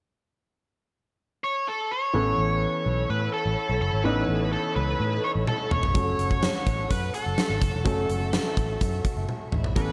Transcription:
1.44 C#5
1.68 A4
1.91 C#5
2.13 A1 E3 B3 C#4 A4 C#5 B5 E6
2.38 A1
2.86 B1
3.10 A2 B4
3.34 A4
3.46 A1
3.69 B1
3.81 F#1 A4
3.93 G#1
4.04 A1 E3 B3 C#4 D#4 B4
4.29 A1
4.53 A4
4.76 C#2 B4
5.00 A2
5.24 C#5
5.35 A1
5.47 A4, high tom
5.71 E1 C#5, mid tom
5.83 floor tom
5.94 F#1 F#3 A3 C#4 A4 F#5 C#6, kick, closed hi-hat
6.19 F#1, closed hi-hat
6.31 kick
6.43 snare, closed hi-hat
6.67 A1, kick, closed hi-hat
6.90 F#2 B4, kick, closed hi-hat
7.14 A4, closed hi-hat
7.26 F#1
7.38 snare, closed hi-hat
7.50 G#1
7.61 F#1, kick, closed hi-hat
7.74 E1
7.85 F#1 F#3 A3 C#4 A4 E5, kick, closed hi-hat
8.09 F#1, closed hi-hat
8.33 snare, closed hi-hat
8.57 A1, kick, closed hi-hat
8.81 F#2, kick, closed hi-hat
9.05 kick, closed hi-hat
9.17 F#1
9.29 high tom
9.52 A1 E5 B5, mid tom
9.64 floor tom
9.76 A1 E3 B3 C#4 A4 B4, kick, closed hi-hat

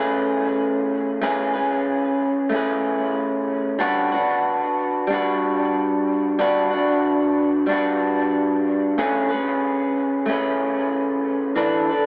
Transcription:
Already playing: A3 C#4 G#4 B4
1.22 A3 C#4 G#4 B4
1.54 C#4 G#4 B4
2.49 A3 C#4
2.54 G#4 B4
3.79 G3 D4 F#4 B4
4.12 D4 F#4 B4
5.07 G3 D4
5.12 F#4 B4
6.39 G3 D4 F#4 B4
6.71 D4 F#4 B4
7.67 G3 D4
7.71 F#4 B4
8.98 A3 C#4 G#4 B4
9.29 C#4 G#4 B4
10.26 A3 C#4 G#4
10.32 B4
11.56 E3 D4 A4 B4
11.89 D4 A4 B4

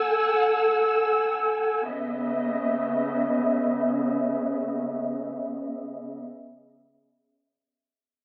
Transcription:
Already playing: A4 F#5 G#5 E6
1.88 C#3 B3 D#5 E5

